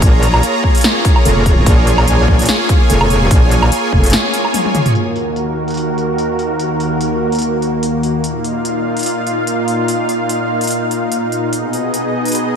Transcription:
Already playing: supersaw synth A#3 F4 G#4 C#5 A#5
0.02 wobble bass A#1, kick, closed hi-hat
0.23 closed hi-hat
0.34 low woodblock
0.43 closed hi-hat
0.64 kick
0.75 closed hi-hat
0.77 closed hi-hat
0.81 snare, closed hi-hat
0.84 closed hi-hat
1.05 kick, closed hi-hat
1.16 low woodblock
1.25 wobble bass F1, closed hi-hat
1.46 kick, closed hi-hat
1.66 wobble bass A#1, supersaw synth G#5, kick, closed hi-hat
1.87 closed hi-hat
1.98 low woodblock
2.08 wobble bass A#1, closed hi-hat
2.28 wobble bass A#1, kick
2.39 closed hi-hat
2.42 closed hi-hat
2.45 snare, closed hi-hat
2.49 closed hi-hat
2.69 kick, closed hi-hat
2.90 wobble bass F1, closed hi-hat
3.01 low woodblock
3.10 closed hi-hat
3.31 wobble bass A#1, kick, closed hi-hat
3.51 closed hi-hat
3.62 low woodblock
3.72 closed hi-hat
3.92 wobble bass F1, kick
4.04 closed hi-hat
4.06 closed hi-hat
4.10 snare, closed hi-hat
4.13 closed hi-hat
4.34 closed hi-hat
4.45 low woodblock
4.54 closed hi-hat, high tom
4.65 high tom
4.75 closed hi-hat, mid tom
4.86 closed hi-hat, mid tom
4.95 supersaw synth D#2 D#3 A#3 F#4 A#4, closed hi-hat
5.16 closed hi-hat
5.36 closed hi-hat
5.68 closed hi-hat
5.71 closed hi-hat
5.74 closed hi-hat
5.77 closed hi-hat
5.98 closed hi-hat
6.18 closed hi-hat
6.39 closed hi-hat
6.60 closed hi-hat
6.80 closed hi-hat
7.01 closed hi-hat
7.32 closed hi-hat
7.35 closed hi-hat
7.39 closed hi-hat
7.42 closed hi-hat
7.62 closed hi-hat
7.83 closed hi-hat
8.03 closed hi-hat
8.24 supersaw synth A#2 D#4 F4 F5, closed hi-hat
8.44 closed hi-hat
8.65 closed hi-hat
8.97 closed hi-hat
8.99 closed hi-hat
9.03 closed hi-hat
9.06 closed hi-hat
9.27 closed hi-hat
9.47 closed hi-hat
9.68 closed hi-hat
9.88 closed hi-hat
10.09 closed hi-hat
10.29 closed hi-hat
10.61 closed hi-hat
10.64 closed hi-hat
10.67 closed hi-hat
10.71 closed hi-hat
10.91 closed hi-hat
11.12 closed hi-hat
11.32 closed hi-hat
11.53 supersaw synth B2 B3 G#4 D#5, closed hi-hat
11.73 closed hi-hat
11.94 closed hi-hat
12.25 closed hi-hat
12.28 closed hi-hat
12.32 closed hi-hat
12.35 closed hi-hat

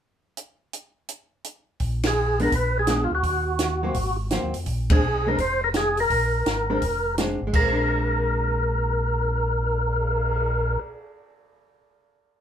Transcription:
0.37 closed hi-hat
0.73 closed hi-hat
1.09 closed hi-hat
1.44 closed hi-hat
1.80 tonewheel organ A#1, kick, open hi-hat
2.03 tonewheel organ G#4, snare, ride
2.39 hollow-body jazz guitar G#3 B3 D4, tonewheel organ A#4, open hi-hat
2.52 tonewheel organ A#1 B4, kick, open hi-hat
2.79 tonewheel organ G#4
2.87 hollow-body jazz guitar G#3 B3 D4, snare, closed hi-hat
3.04 tonewheel organ F4
3.11 tonewheel organ D2 F#4
3.23 tonewheel organ D#2, kick, open hi-hat
3.59 snare, closed hi-hat
3.83 hollow-body jazz guitar F#3 A#3 C4
3.94 tonewheel organ G#1, kick, open hi-hat
4.31 hollow-body jazz guitar F#3 A#3 C4, snare, closed hi-hat
4.43 tonewheel organ D#2
4.54 tonewheel organ F2, open hi-hat
4.66 tonewheel organ A#1, kick, open hi-hat
4.90 hollow-body jazz guitar G#3 C4 D4, tonewheel organ G#4, kick, ride
5.03 tonewheel organ B1
5.27 hollow-body jazz guitar G#3 C4 D4, tonewheel organ A#4
5.38 tonewheel organ F1 C5, kick, open hi-hat
5.64 tonewheel organ A#4
5.74 tonewheel organ G#4, snare, closed hi-hat
5.97 tonewheel organ A#4, open hi-hat
6.10 tonewheel organ A#1, kick, open hi-hat
6.46 tonewheel organ G#1, snare, closed hi-hat
6.70 hollow-body jazz guitar G#3 C4 D4
6.82 tonewheel organ F1, kick, open hi-hat
7.18 hollow-body jazz guitar G#3 C4 D4, snare, closed hi-hat
7.41 tonewheel organ G#1
7.47 hollow-body jazz guitar G#3
7.53 tonewheel organ A#1 A#4, kick, crash
7.61 hollow-body jazz guitar C4
7.72 hollow-body jazz guitar D4
7.77 cymbal swell

